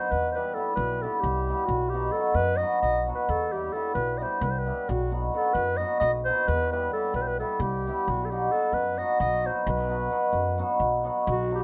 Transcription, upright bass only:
0, 0, Header, 1, 2, 480
1, 0, Start_track
1, 0, Tempo, 455235
1, 123, Time_signature, 7, 3, 24, 8
1, 12271, End_track
2, 0, Start_track
2, 0, Title_t, "Upright bass"
2, 0, Program_c, 0, 32
2, 122, Note_on_c, 0, 40, 74
2, 536, Note_off_c, 0, 40, 0
2, 813, Note_on_c, 0, 35, 81
2, 1107, Note_off_c, 0, 35, 0
2, 1302, Note_on_c, 0, 36, 86
2, 1596, Note_off_c, 0, 36, 0
2, 1776, Note_on_c, 0, 35, 85
2, 2197, Note_off_c, 0, 35, 0
2, 2472, Note_on_c, 0, 42, 80
2, 2770, Note_off_c, 0, 42, 0
2, 2980, Note_on_c, 0, 35, 74
2, 3274, Note_off_c, 0, 35, 0
2, 3464, Note_on_c, 0, 40, 82
2, 3881, Note_off_c, 0, 40, 0
2, 4166, Note_on_c, 0, 35, 74
2, 4460, Note_off_c, 0, 35, 0
2, 4653, Note_on_c, 0, 36, 92
2, 4949, Note_off_c, 0, 36, 0
2, 5157, Note_on_c, 0, 35, 89
2, 5571, Note_off_c, 0, 35, 0
2, 5849, Note_on_c, 0, 42, 78
2, 6142, Note_off_c, 0, 42, 0
2, 6337, Note_on_c, 0, 35, 92
2, 6632, Note_off_c, 0, 35, 0
2, 6833, Note_on_c, 0, 40, 99
2, 7249, Note_off_c, 0, 40, 0
2, 7528, Note_on_c, 0, 35, 74
2, 7823, Note_off_c, 0, 35, 0
2, 8009, Note_on_c, 0, 36, 94
2, 8308, Note_off_c, 0, 36, 0
2, 8516, Note_on_c, 0, 35, 83
2, 8933, Note_off_c, 0, 35, 0
2, 9200, Note_on_c, 0, 42, 68
2, 9500, Note_off_c, 0, 42, 0
2, 9700, Note_on_c, 0, 35, 87
2, 9998, Note_off_c, 0, 35, 0
2, 10192, Note_on_c, 0, 35, 99
2, 10613, Note_off_c, 0, 35, 0
2, 10889, Note_on_c, 0, 42, 73
2, 11188, Note_off_c, 0, 42, 0
2, 11384, Note_on_c, 0, 35, 77
2, 11683, Note_off_c, 0, 35, 0
2, 11885, Note_on_c, 0, 35, 96
2, 12271, Note_off_c, 0, 35, 0
2, 12271, End_track
0, 0, End_of_file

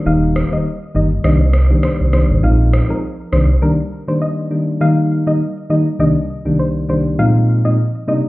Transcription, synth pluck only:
0, 0, Header, 1, 2, 480
1, 0, Start_track
1, 0, Key_signature, -3, "major"
1, 0, Tempo, 594059
1, 47, Time_signature, 4, 2, 24, 8
1, 6697, End_track
2, 0, Start_track
2, 0, Title_t, "Synth pluck"
2, 0, Program_c, 0, 84
2, 53, Note_on_c, 0, 77, 99
2, 163, Note_off_c, 0, 77, 0
2, 427, Note_on_c, 0, 75, 80
2, 515, Note_off_c, 0, 75, 0
2, 774, Note_on_c, 0, 75, 82
2, 883, Note_off_c, 0, 75, 0
2, 1011, Note_on_c, 0, 75, 92
2, 1359, Note_off_c, 0, 75, 0
2, 1492, Note_on_c, 0, 72, 78
2, 1602, Note_off_c, 0, 72, 0
2, 1730, Note_on_c, 0, 72, 77
2, 1841, Note_off_c, 0, 72, 0
2, 1970, Note_on_c, 0, 77, 94
2, 2081, Note_off_c, 0, 77, 0
2, 2346, Note_on_c, 0, 70, 85
2, 2435, Note_off_c, 0, 70, 0
2, 2690, Note_on_c, 0, 72, 84
2, 2801, Note_off_c, 0, 72, 0
2, 2928, Note_on_c, 0, 70, 85
2, 3040, Note_off_c, 0, 70, 0
2, 3299, Note_on_c, 0, 72, 85
2, 3391, Note_off_c, 0, 72, 0
2, 3406, Note_on_c, 0, 75, 86
2, 3756, Note_off_c, 0, 75, 0
2, 3888, Note_on_c, 0, 77, 109
2, 4000, Note_off_c, 0, 77, 0
2, 4260, Note_on_c, 0, 75, 82
2, 4351, Note_off_c, 0, 75, 0
2, 4607, Note_on_c, 0, 75, 83
2, 4719, Note_off_c, 0, 75, 0
2, 4849, Note_on_c, 0, 75, 101
2, 5198, Note_off_c, 0, 75, 0
2, 5328, Note_on_c, 0, 72, 84
2, 5440, Note_off_c, 0, 72, 0
2, 5572, Note_on_c, 0, 72, 83
2, 5682, Note_off_c, 0, 72, 0
2, 5810, Note_on_c, 0, 77, 106
2, 5921, Note_off_c, 0, 77, 0
2, 6181, Note_on_c, 0, 75, 88
2, 6272, Note_off_c, 0, 75, 0
2, 6533, Note_on_c, 0, 75, 83
2, 6642, Note_off_c, 0, 75, 0
2, 6697, End_track
0, 0, End_of_file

